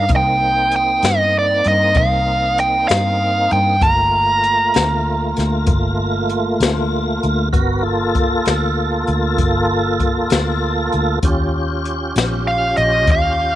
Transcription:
0.08 0.99 C2 medium
0.08 3.77 A#3 medium
0.08 3.76 C4 medium
0.08 3.77 D#4 medium
0.08 kick medium
0.08 closed hi-hat medium
0.16 0.75 G5 medium
0.71 closed hi-hat medium
0.76 1.06 G5 medium
1.02 1.61 G2 medium
1.02 snare medium
1.02 closed hi-hat medium
1.06 1.37 D#5 medium
1.39 1.68 D5 medium
1.64 1.97 G2 medium
1.64 closed hi-hat medium
1.68 1.98 D#5 medium
1.94 2.85 C2 medium
1.94 2.60 F5 medium
1.94 kick loud
1.94 closed hi-hat medium
2.58 2.88 G5 medium
2.58 closed hi-hat soft
2.88 3.47 G2 medium
2.88 3.52 F5 medium
2.88 snare loud
2.88 closed hi-hat medium
3.51 3.80 G2 medium
3.51 3.83 G5 medium
3.51 closed hi-hat medium
3.81 4.70 G1 medium
3.81 7.49 A3 medium
3.81 7.49 A#3 medium
3.81 7.48 F4 medium
3.81 5.63 A#5 medium
3.81 kick medium
3.81 closed hi-hat medium
4.43 closed hi-hat medium
4.74 5.33 D2 medium
4.74 snare medium
4.74 closed hi-hat medium
5.36 5.69 D2 medium
5.36 snare soft
5.36 closed hi-hat medium
5.66 6.56 G1 medium
5.66 kick loud
5.66 closed hi-hat medium
6.29 closed hi-hat medium
6.60 7.18 D2 medium
6.60 snare loud
6.60 closed hi-hat medium
7.23 7.51 D2 medium
7.23 closed hi-hat medium
7.53 8.42 G1 medium
7.53 7.83 B3 medium
7.53 7.83 F#4 medium
7.53 7.83 A#4 medium
7.53 kick medium
7.53 closed hi-hat medium
7.82 11.19 A#3 medium
7.82 11.19 F4 medium
7.82 11.19 A4 medium
8.15 kick medium
8.15 closed hi-hat medium
8.45 9.04 D2 medium
8.45 snare medium
8.45 closed hi-hat medium
9.07 9.40 D2 medium
9.07 closed hi-hat soft
9.38 10.27 G1 medium
9.38 kick medium
9.38 closed hi-hat medium
10.00 kick medium
10.00 closed hi-hat medium
10.30 10.89 D2 medium
10.30 snare loud
10.30 closed hi-hat medium
10.92 11.21 D2 medium
10.92 closed hi-hat medium
11.22 12.11 D#2 medium
11.22 13.55 C#4 medium
11.22 13.55 F4 medium
11.22 13.55 G4 medium
11.22 kick loud
11.22 closed hi-hat medium
11.85 closed hi-hat medium
12.16 12.73 A#1 medium
12.16 snare medium
12.16 closed hi-hat medium
12.47 12.77 F5 medium
12.76 13.08 A#1 medium
12.76 13.09 D#5 medium
12.76 closed hi-hat medium
13.07 13.55 D#2 medium
13.07 kick loud
13.07 closed hi-hat medium
13.12 13.55 F5 medium

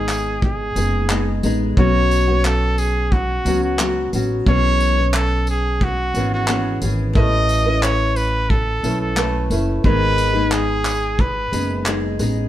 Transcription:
0.00 0.72 G#1 loud
0.00 0.74 G#3 soft
0.00 0.76 B3 soft
0.00 0.76 D#4 soft
0.00 0.43 G#4 medium
0.00 0.76 G#4 medium
0.09 clap medium
0.09 tambourine medium
0.42 1.40 G#4 medium
0.42 kick loud
0.75 1.39 F#1 medium
0.75 1.08 G#3 medium
0.75 1.09 B3 medium
0.75 1.10 D#4 medium
0.75 1.11 G#4 medium
0.75 tambourine medium
1.09 1.42 G#3 medium
1.09 1.43 B3 medium
1.09 1.44 D#4 medium
1.09 1.44 G#4 medium
1.09 clap loud
1.43 1.74 A1 medium
1.43 1.77 G#3 medium
1.43 1.77 B3 medium
1.43 1.78 D#4 medium
1.43 1.78 G#4 medium
1.43 tambourine medium
1.77 3.41 B1 loud
1.77 2.28 B2 medium
1.77 2.28 F#3 medium
1.77 2.28 B3 medium
1.77 2.28 C#4 medium
1.77 2.27 F#4 medium
1.77 2.47 C#5 loud
1.77 kick loud
2.11 tambourine medium
2.28 3.46 B3 soft
2.28 3.47 C#4 medium
2.28 3.45 F#4 medium
2.45 2.80 A4 loud
2.45 clap loud
2.78 3.14 G#4 medium
2.78 tambourine medium
3.12 3.62 F#4 medium
3.12 kick loud
3.45 4.08 C#2 medium
3.45 3.78 F#3 medium
3.45 3.78 B3 medium
3.45 3.79 C#4 medium
3.45 3.80 F#4 medium
3.45 tambourine medium
3.63 4.10 F#4 medium
3.79 4.12 F#3 medium
3.79 4.13 B3 medium
3.79 4.13 C#4 medium
3.79 4.14 F#4 medium
3.79 clap loud
4.13 4.44 A1 medium
4.13 4.46 F#3 medium
4.13 4.47 B3 medium
4.13 4.47 C#4 medium
4.13 4.48 F#4 medium
4.13 tambourine medium
4.46 6.11 B1 loud
4.46 4.97 B2 medium
4.46 4.97 E3 medium
4.46 4.98 B3 medium
4.46 4.98 C#4 medium
4.46 4.98 G#4 medium
4.46 5.11 C#5 loud
4.46 kick loud
4.80 tambourine medium
4.99 6.16 B3 soft
4.99 6.16 C#4 soft
5.14 5.46 A4 medium
5.14 clap loud
5.47 5.85 G#4 medium
5.47 tambourine medium
5.81 6.33 F#4 medium
5.81 kick loud
6.14 6.78 G#1 medium
6.14 6.47 E3 medium
6.14 6.47 B3 medium
6.14 6.48 C#4 medium
6.14 6.49 G#4 medium
6.14 tambourine medium
6.34 6.80 F#4 medium
6.48 6.81 E3 medium
6.48 6.81 B3 medium
6.48 6.82 C#4 medium
6.48 6.83 G#4 medium
6.48 clap loud
6.82 7.13 G#1 medium
6.82 7.15 E3 medium
6.82 7.15 B3 medium
6.82 7.14 C#4 medium
6.82 7.16 G#4 medium
6.82 tambourine medium
7.15 8.80 A1 loud
7.15 7.66 A3 medium
7.15 7.66 C#4 medium
7.15 7.66 E4 medium
7.15 7.64 B4 medium
7.15 7.84 D#5 loud
7.15 kick loud
7.49 tambourine medium
7.66 8.83 C#4 soft
7.66 8.83 E4 medium
7.66 8.85 B4 medium
7.83 8.18 C#5 medium
7.83 clap loud
8.16 8.51 B4 medium
8.16 tambourine medium
8.50 9.00 A4 medium
8.50 kick loud
8.83 9.47 B1 medium
8.83 9.15 A3 medium
8.83 9.15 C#4 medium
8.83 9.16 E4 medium
8.83 9.17 B4 medium
8.83 tambourine medium
9.01 9.48 A4 medium
9.16 9.49 A3 medium
9.16 9.50 C#4 medium
9.16 9.51 E4 medium
9.16 9.52 B4 medium
9.16 clap loud
9.50 9.81 F#1 medium
9.50 9.84 A3 medium
9.50 9.85 C#4 medium
9.50 9.85 E4 medium
9.50 9.85 B4 medium
9.50 tambourine medium
9.84 11.49 G#1 loud
9.84 10.35 G#2 medium
9.84 10.35 D#3 medium
9.84 10.35 G#3 medium
9.84 10.34 B3 medium
9.84 10.33 D#4 medium
9.84 10.32 G#4 medium
9.84 10.54 B4 loud
9.84 kick loud
10.18 tambourine medium
10.34 11.50 G#3 soft
10.34 11.52 B3 soft
10.34 11.52 D#4 medium
10.34 11.52 G#4 medium
10.52 11.22 G#4 medium
10.52 clap loud
10.85 clap loud
10.85 tambourine medium
11.19 11.87 B4 medium
11.19 kick loud
11.52 12.16 F#1 medium
11.52 11.85 G#3 medium
11.52 11.86 B3 medium
11.52 11.86 D#4 medium
11.52 11.87 G#4 medium
11.52 tambourine medium
11.86 12.18 G#3 medium
11.86 12.19 B3 medium
11.86 12.20 D#4 medium
11.86 12.20 G#4 medium
11.86 clap loud
12.19 12.48 A1 medium
12.19 12.48 G#3 medium
12.19 12.48 B3 medium
12.19 12.48 D#4 medium
12.19 12.48 G#4 medium
12.19 tambourine medium

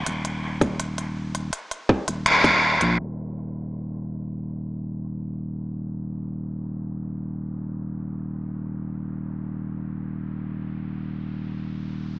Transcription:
0.06 1.49 D#1 loud
0.06 closed hi-hat medium
0.25 closed hi-hat soft
0.61 kick medium
0.61 closed hi-hat soft
0.80 closed hi-hat medium
0.98 closed hi-hat soft
1.35 closed hi-hat soft
1.53 closed hi-hat medium
1.71 closed hi-hat soft
1.89 kick loud
2.08 2.77 D#1 medium
2.08 closed hi-hat soft
2.26 finger snap medium
2.26 closed hi-hat medium
2.44 kick medium
2.44 closed hi-hat soft
2.81 2.97 A#1 medium
2.81 closed hi-hat soft
2.99 12.19 D#1 medium

